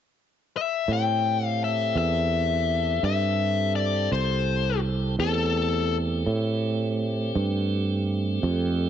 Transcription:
0.57 0.92 E5 medium
0.88 1.93 A2 medium
0.88 5.16 C4 medium
0.88 5.16 G4 medium
0.88 5.16 A4 medium
0.93 1.46 G5 loud
1.46 1.64 F5 loud
1.64 1.96 E5 medium
1.95 3.00 E2 medium
1.95 3.04 E5 medium
3.03 4.08 G2 medium
3.03 3.72 E5 medium
3.76 4.09 D5 medium
4.12 5.16 C2 medium
4.12 4.80 C5 medium
5.19 6.23 E2 medium
5.19 8.89 A3 medium
5.19 8.89 C4 medium
5.19 8.89 G4 medium
5.19 5.96 A4 medium
6.27 7.31 A2 medium
7.35 8.39 G2 medium
8.43 8.89 F2 medium

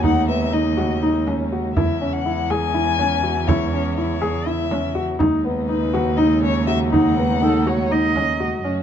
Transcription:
0.00 1.77 D#2 medium
0.00 5.17 C#3 soft
0.00 5.18 G#3 soft
0.00 1.73 A3 medium
0.00 1.73 D#4 medium
0.00 0.22 D#4 medium
0.00 frame drum soft
0.05 0.27 F#5 medium
0.28 0.46 B3 medium
0.28 0.55 E5 medium
0.53 0.71 D#4 medium
0.53 1.27 D#5 medium
0.77 0.96 F#4 medium
0.77 frame drum soft
1.02 1.21 D#4 medium
1.27 1.45 C#4 medium
1.27 frame drum soft
1.52 1.70 F#4 medium
1.75 5.21 E2 medium
1.75 1.95 E4 medium
1.75 5.18 E4 medium
1.75 2.14 E5 medium
1.75 frame drum medium
2.01 2.19 C#4 medium
2.13 2.51 F#5 medium
2.26 2.44 E4 medium
2.50 2.69 G#4 medium
2.50 3.49 G#5 loud
2.50 frame drum soft
2.74 2.93 E4 medium
2.99 3.17 C#4 medium
2.99 frame drum soft
3.23 3.42 F#4 medium
3.23 frame drum soft
3.48 3.67 E4 medium
3.48 3.97 C#5 medium
3.48 frame drum medium
3.73 3.92 C#4 medium
3.97 4.16 E4 medium
3.97 4.50 C#5 medium
4.22 4.40 G#4 medium
4.22 frame drum soft
4.46 4.65 E4 medium
4.46 5.03 E5 medium
4.71 4.90 C#4 medium
4.71 frame drum medium
4.95 5.14 F#4 medium
4.95 frame drum soft
5.19 8.61 D#2 medium
5.19 8.62 C#3 medium
5.19 8.62 G#3 medium
5.19 8.62 A3 medium
5.19 5.38 D#4 medium
5.19 8.62 D#4 medium
5.19 frame drum medium
5.44 5.63 B3 medium
5.69 5.88 D#4 medium
5.69 6.18 B4 medium
5.94 6.12 F#4 medium
5.94 frame drum soft
6.17 6.37 D#4 medium
6.17 6.42 D#5 medium
6.43 6.62 C#4 medium
6.43 6.66 C#5 medium
6.67 6.86 F#4 medium
6.67 6.78 E5 medium
6.67 frame drum soft
6.91 7.11 D#4 medium
6.91 8.11 F#5 medium
6.91 frame drum soft
7.17 7.36 B3 medium
7.42 7.60 D#4 medium
7.42 7.69 A4 medium
7.66 7.85 F#4 medium
7.66 7.93 C#5 medium
7.66 frame drum soft
7.91 8.10 D#4 medium
7.91 8.66 D#5 medium
8.16 8.34 C#4 medium
8.16 frame drum soft
8.40 8.59 F#4 medium
8.40 frame drum soft
8.64 8.83 F#2 medium
8.64 8.83 C#3 medium
8.64 8.83 A3 soft
8.64 8.83 C#4 medium
8.64 8.83 F#4 medium

